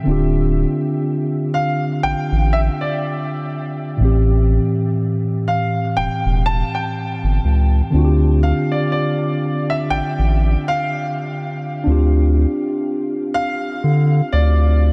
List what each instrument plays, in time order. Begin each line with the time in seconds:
0.03 sub bass D1, tine electric piano D3 C4 D4
0.09 tine electric piano F4 G4
1.54 grand piano F5
2.03 sub bass A1, grand piano G5
2.32 sub bass A1
2.53 grand piano E5
2.81 grand piano D5
3.97 sub bass A1, tine electric piano A2 E3
4.02 tine electric piano C4 G4
5.48 grand piano F5
5.97 sub bass E1, grand piano G5
6.25 sub bass E1
6.46 grand piano A5
6.75 grand piano G5
7.24 sub bass G1
7.44 sub bass C#2
7.90 sub bass D2, tine electric piano D3 C4 D4
7.96 tine electric piano F4 F#4
8.05 tine electric piano G4
8.43 grand piano F5
8.72 grand piano D5
8.92 grand piano D5
9.70 grand piano E5
9.90 sub bass A1, grand piano G5
10.19 sub bass A1
10.68 grand piano F5
11.84 sub bass D2, tine electric piano C4 D4
11.90 tine electric piano F4 G4
13.34 grand piano F5
13.84 sub bass D3
14.33 sub bass D2, grand piano D5